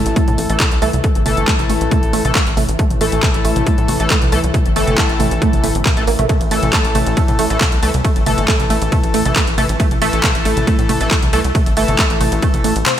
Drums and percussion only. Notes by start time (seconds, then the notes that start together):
0.06 closed hi-hat
0.16 kick, closed hi-hat
0.28 closed hi-hat, mid tom
0.38 open hi-hat
0.50 closed hi-hat
0.60 kick, clap, closed hi-hat, mid tom
0.72 closed hi-hat
0.82 open hi-hat
0.93 closed hi-hat, mid tom
1.04 kick, closed hi-hat
1.15 closed hi-hat
1.26 mid tom, open hi-hat
1.37 closed hi-hat
1.48 kick, clap, closed hi-hat
1.59 closed hi-hat, mid tom
1.70 open hi-hat
1.81 closed hi-hat
1.91 kick, closed hi-hat, mid tom
2.03 closed hi-hat
2.13 open hi-hat
2.25 closed hi-hat, mid tom
2.35 kick, clap, closed hi-hat
2.47 closed hi-hat
2.57 mid tom, open hi-hat
2.69 closed hi-hat
2.79 kick, closed hi-hat
2.90 closed hi-hat, mid tom
3.01 open hi-hat
3.12 closed hi-hat
3.23 kick, clap, closed hi-hat, mid tom
3.34 closed hi-hat
3.45 open hi-hat
3.56 closed hi-hat, mid tom
3.67 kick, closed hi-hat
3.78 closed hi-hat
3.88 mid tom, open hi-hat
4.00 closed hi-hat
4.10 kick, clap, closed hi-hat
4.22 closed hi-hat, mid tom
4.32 open hi-hat
4.44 closed hi-hat
4.54 kick, closed hi-hat, mid tom
4.66 closed hi-hat
4.76 open hi-hat
4.87 closed hi-hat, mid tom
4.98 kick, clap, closed hi-hat
5.09 closed hi-hat
5.20 mid tom, open hi-hat
5.31 closed hi-hat
5.42 kick, closed hi-hat
5.53 closed hi-hat, mid tom
5.64 open hi-hat
5.75 closed hi-hat
5.86 kick, clap, closed hi-hat, mid tom
5.97 closed hi-hat
6.07 open hi-hat
6.19 closed hi-hat, mid tom
6.29 kick, closed hi-hat, mid tom, ride
6.41 closed hi-hat, ride
6.51 open hi-hat, ride
6.63 closed hi-hat, mid tom, ride
6.73 kick, clap, closed hi-hat, ride
6.85 closed hi-hat, ride
6.95 mid tom, open hi-hat, ride
7.06 closed hi-hat, ride
7.17 kick, closed hi-hat, ride
7.28 closed hi-hat, mid tom, ride
7.39 open hi-hat, ride
7.50 closed hi-hat, ride
7.61 kick, clap, closed hi-hat, mid tom, ride
7.72 closed hi-hat, ride
7.83 open hi-hat, ride
7.94 closed hi-hat, mid tom, ride
8.05 kick, closed hi-hat, ride
8.16 closed hi-hat, ride
8.26 mid tom, open hi-hat, ride
8.38 closed hi-hat, ride
8.48 kick, clap, closed hi-hat, ride
8.60 closed hi-hat, mid tom, ride
8.70 open hi-hat, ride
8.82 closed hi-hat, ride
8.92 kick, closed hi-hat, mid tom, ride
9.04 closed hi-hat, ride
9.14 open hi-hat, ride
9.25 closed hi-hat, mid tom, ride
9.36 kick, clap, closed hi-hat, ride
9.47 closed hi-hat, ride
9.58 mid tom, open hi-hat, ride
9.69 closed hi-hat, ride
9.80 kick, closed hi-hat, ride
9.91 closed hi-hat, mid tom, ride
10.02 open hi-hat, ride
10.13 closed hi-hat, ride
10.23 kick, clap, closed hi-hat, mid tom, ride
10.35 closed hi-hat, ride
10.45 open hi-hat, ride
10.57 closed hi-hat, mid tom, ride
10.67 kick, closed hi-hat, ride
10.79 closed hi-hat, ride
10.89 mid tom, open hi-hat, ride
11.01 closed hi-hat, ride
11.11 kick, clap, closed hi-hat, ride
11.22 closed hi-hat, mid tom, ride
11.33 open hi-hat, ride
11.44 closed hi-hat, ride
11.55 kick, closed hi-hat, mid tom, ride
11.66 closed hi-hat, ride
11.77 open hi-hat, ride
11.88 closed hi-hat, mid tom, ride
11.99 kick, clap, closed hi-hat, ride
12.10 closed hi-hat, ride
12.21 mid tom, open hi-hat, ride
12.32 closed hi-hat, ride
12.42 kick, closed hi-hat, ride
12.54 closed hi-hat, mid tom, ride
12.64 open hi-hat, ride
12.76 closed hi-hat, ride
12.86 clap, closed hi-hat, mid tom, ride